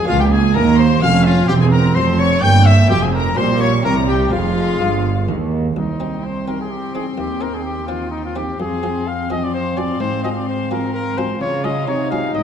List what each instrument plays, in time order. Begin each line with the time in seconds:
0.05 harpsichord A#3 C#4 F4, viola section A#3, trumpet F4, violin section F5
0.09 harpsichord C#2, double bass section C#2, cello section C#2, violin section F5
0.19 trumpet G4, violin section G5
0.32 trumpet G#4, violin section G#5
0.55 harpsichord D#2, double bass section D#2, cello section D#2, viola section A#3, trumpet A#4, violin section A#5
0.79 trumpet C5, violin section C6
1.02 double bass section F1, harpsichord F2, cello section F2, viola section C#4, trumpet F5, violin section F6
1.25 trumpet F4, violin section F5
1.46 double bass section E1, harpsichord E2 C4 G4, cello section E2, viola section C4, trumpet G4, violin section G5
1.61 trumpet G#4, violin section G#5
1.72 trumpet A#4, violin section A#5
1.96 double bass section F1, harpsichord F2, cello section F2, trumpet C5, violin section C6
2.19 trumpet C#5, violin section C#6
2.42 double bass section G1, harpsichord G2, cello section G2, viola section A#3, trumpet G5, violin section G6
2.66 trumpet E5, violin section E6
2.86 cello section F2, harpsichord F2 G#3 C4 F4, viola section C4, trumpet G4, violin section G5
2.90 double bass section F1
3.02 trumpet G#4, violin section G#5
3.13 trumpet A#4, violin section A#5
3.35 double bass section A#1, harpsichord A#2 C#4 G4, cello section A#2, viola section G3, trumpet C5, violin section C6
3.60 trumpet C#5, violin section C#6
3.83 double bass section C2, cello section C3, harpsichord C3 C4 E4, viola section G3, trumpet A#4, violin section A#5
4.07 trumpet G4, violin section G5
4.28 harpsichord G#3 C4 F4, trumpet F4, violin section F5
4.33 double bass section F1, harpsichord F2, cello section F2, viola section G#3, violin section F5
4.80 double bass section G1, cello section G2, harpsichord G2
5.28 double bass section D#2, harpsichord D#2, cello section D#2
5.76 harpsichord C2, cello section C2, viola section C4, trumpet D#4, violin section G5 C6
6.00 harpsichord C4 D#4
6.24 trumpet C5
6.48 harpsichord C4 D#4, trumpet A#4
6.61 trumpet G#4
6.71 trumpet G4
6.95 harpsichord C4 D#4, trumpet G#4
7.18 harpsichord D#2, cello section D#2, trumpet G4
7.41 harpsichord C4 D#4, trumpet A#4
7.54 trumpet G#4
7.65 trumpet G4
7.87 harpsichord C4 D#4, trumpet F4
8.11 trumpet D#4
8.25 trumpet F4
8.36 harpsichord C4 D#4, trumpet G4
8.59 harpsichord F2, cello section F2, viola section C4, trumpet G#4, violin section F5 C6
8.83 harpsichord C4 F4 G#4
9.08 trumpet F5
9.30 harpsichord C4 F4 G#4, trumpet D#5
9.44 trumpet D5
9.54 trumpet C5
9.77 harpsichord C4 F4 G#4, trumpet D5
10.00 harpsichord G#2 G#3, cello section G#2, trumpet C5
10.24 harpsichord C4 F4 G#4, trumpet D#5
10.37 trumpet D5
10.49 trumpet C5
10.71 harpsichord C4 F4 G#4, trumpet A#4
10.94 trumpet A#4
11.18 harpsichord C4 F4 G#4, trumpet C5
11.40 cello section C#3, harpsichord C#3, viola section F4, trumpet C#5, violin section F5 A#5
11.64 harpsichord G#3 C#4 F4, trumpet D#5
11.87 cello section C3, harpsichord C3, viola section D#4, trumpet C#5, violin section G#5
12.11 harpsichord G#3 C#4 F4, trumpet F5
12.34 cello section G#2, harpsichord G#2, trumpet D#5, violin section F5 G5